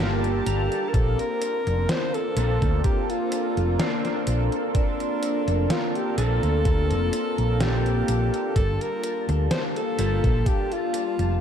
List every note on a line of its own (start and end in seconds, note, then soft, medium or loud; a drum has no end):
0.00 0.40 G1 medium
0.00 0.96 G3 loud
0.00 0.46 A#3 medium
0.00 0.92 A#3 medium
0.00 0.94 D4 medium
0.00 0.47 F4 medium
0.00 0.95 F4 medium
0.00 0.47 G4 medium
0.00 0.90 G4 medium
0.00 0.90 G4 loud
0.00 0.47 A#4 medium
0.00 0.90 F5 medium
0.00 0.43 G5 medium
0.00 0.90 G5 medium
0.00 0.96 A5 loud
0.24 closed hi-hat soft
0.46 0.67 G1 medium
0.46 0.91 A#5 medium
0.46 closed hi-hat medium
0.72 closed hi-hat soft
0.89 2.31 A#3 medium
0.89 0.96 A#4 medium
0.93 1.15 A#1 loud
0.93 8.52 A#3 medium
0.93 2.31 C4 medium
0.93 2.31 D4 medium
0.93 2.32 F4 medium
0.93 1.21 A4 loud
0.93 2.32 A#4 loud
0.93 8.52 D5 medium
0.93 11.41 A5 medium
0.93 8.52 C6 medium
0.93 muted clean electric guitar stroke loud
0.93 kick loud
0.93 closed hi-hat medium
1.19 1.91 A#4 loud
1.19 muted clean electric guitar stroke soft
1.19 closed hi-hat soft
1.42 muted clean electric guitar stroke soft
1.42 closed hi-hat medium
1.67 1.85 F1 loud
1.67 muted clean electric guitar stroke medium
1.67 closed hi-hat soft
1.89 2.16 C5 loud
1.89 muted clean electric guitar stroke soft
1.89 snare loud
1.89 closed hi-hat medium
2.14 2.84 A4 loud
2.14 closed hi-hat soft
2.35 2.57 A#1 loud
2.35 4.21 A#3 loud
2.35 2.85 A#3 medium
2.35 4.22 C4 medium
2.35 2.85 C4 medium
2.35 4.22 D4 medium
2.35 2.85 D4 medium
2.35 4.22 F4 medium
2.35 2.85 A4 loud
2.35 4.23 A4 loud
2.35 closed hi-hat medium
2.62 2.80 D2 medium
2.62 kick loud
2.62 closed hi-hat soft
2.84 3.11 G4 loud
2.84 kick loud
2.84 closed hi-hat medium
3.10 3.81 F4 loud
3.10 closed hi-hat soft
3.32 muted clean electric guitar stroke loud
3.32 closed hi-hat medium
3.57 3.75 F1 loud
3.57 muted clean electric guitar stroke soft
3.57 closed hi-hat soft
3.79 4.27 A#3 medium
3.79 4.27 C4 medium
3.79 4.49 D4 medium
3.79 4.28 D4 medium
3.79 4.28 F4 medium
3.79 snare loud
3.79 closed hi-hat medium
4.05 snare soft
4.05 closed hi-hat soft
4.26 4.48 A#1 medium
4.26 4.69 A#3 loud
4.26 4.69 C4 medium
4.26 4.70 D4 medium
4.26 4.70 F4 medium
4.26 4.70 A4 loud
4.26 closed hi-hat medium
4.52 closed hi-hat soft
4.74 6.12 A#3 medium
4.74 6.12 C4 medium
4.74 6.13 D4 medium
4.74 5.66 D4 loud
4.74 6.13 F4 medium
4.74 6.13 A4 medium
4.74 muted clean electric guitar stroke loud
4.74 kick loud
4.74 closed hi-hat medium
5.00 muted clean electric guitar stroke soft
5.00 closed hi-hat soft
5.22 muted clean electric guitar stroke soft
5.22 closed hi-hat medium
5.47 5.66 F1 loud
5.47 muted clean electric guitar stroke medium
5.47 closed hi-hat soft
5.70 5.97 F4 loud
5.70 muted clean electric guitar stroke soft
5.70 snare loud
5.70 closed hi-hat medium
5.95 6.17 G4 medium
5.95 closed hi-hat soft
6.16 6.38 A#1 loud
6.16 8.02 A#3 loud
6.16 6.65 A#3 medium
6.16 8.03 C4 medium
6.16 6.66 C4 medium
6.16 8.03 D4 medium
6.16 6.66 D4 medium
6.16 8.03 F4 medium
6.16 7.63 A4 loud
6.16 6.66 A4 medium
6.16 8.04 A4 loud
6.16 closed hi-hat medium
6.43 6.92 D2 medium
6.43 closed hi-hat soft
6.65 kick loud
6.65 closed hi-hat medium
6.91 7.09 F1 medium
6.91 closed hi-hat soft
7.13 muted clean electric guitar stroke loud
7.13 closed hi-hat medium
7.38 8.02 A#1 medium
7.38 muted clean electric guitar stroke soft
7.38 closed hi-hat soft
7.60 8.08 A#3 medium
7.60 8.08 C4 medium
7.60 8.08 D4 medium
7.60 8.56 G4 loud
7.60 8.09 A4 medium
7.60 snare loud
7.60 closed hi-hat medium
7.86 closed hi-hat soft
8.08 8.29 A#1 medium
8.08 8.50 A#3 loud
8.08 8.50 C4 medium
8.08 8.51 D4 medium
8.08 8.51 F4 medium
8.08 8.51 A4 loud
8.08 closed hi-hat medium
8.34 closed hi-hat soft
8.54 8.76 G1 loud
8.54 9.93 G3 medium
8.54 9.93 A#3 medium
8.54 9.93 D4 medium
8.54 9.94 F4 medium
8.54 11.41 G4 medium
8.54 8.83 A4 loud
8.54 11.41 F5 medium
8.54 9.94 A5 medium
8.54 muted clean electric guitar stroke loud
8.54 kick loud
8.54 closed hi-hat medium
8.81 9.26 A#4 loud
8.81 muted clean electric guitar stroke soft
8.81 closed hi-hat soft
9.03 muted clean electric guitar stroke soft
9.03 closed hi-hat medium
9.29 9.47 D2 loud
9.29 muted clean electric guitar stroke medium
9.29 closed hi-hat soft
9.51 9.63 C5 loud
9.51 muted clean electric guitar stroke soft
9.51 snare loud
9.51 closed hi-hat medium
9.76 10.49 A4 loud
9.76 closed hi-hat soft
9.97 10.19 G1 loud
9.97 11.41 G3 loud
9.97 11.41 A#3 medium
9.97 10.46 A#3 loud
9.97 11.41 D4 medium
9.97 10.46 F4 medium
9.97 11.41 F4 medium
9.97 10.46 G4 medium
9.97 10.47 A4 medium
9.97 11.41 A5 loud
9.97 closed hi-hat medium
10.24 10.42 A#1 medium
10.24 kick loud
10.24 closed hi-hat soft
10.46 10.74 G4 medium
10.46 kick loud
10.46 closed hi-hat medium
10.72 11.41 F4 loud
10.72 closed hi-hat soft
10.94 muted clean electric guitar stroke loud
10.94 closed hi-hat medium
11.19 11.37 F1 loud
11.19 muted clean electric guitar stroke soft
11.19 closed hi-hat soft